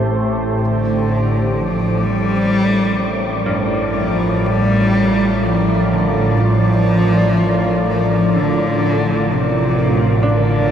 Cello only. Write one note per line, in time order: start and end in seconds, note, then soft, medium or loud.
0.62 1.60 D3 medium
1.58 2.05 F3 medium
2.04 3.50 G3 loud
3.97 4.48 F3 medium
4.47 5.45 G3 loud
5.43 5.94 F3 medium
5.93 6.43 D3 medium
6.41 7.86 F3 loud
7.90 8.39 F3 medium
8.37 9.34 D3 medium
9.33 10.31 C3 medium
10.30 10.71 D3 loud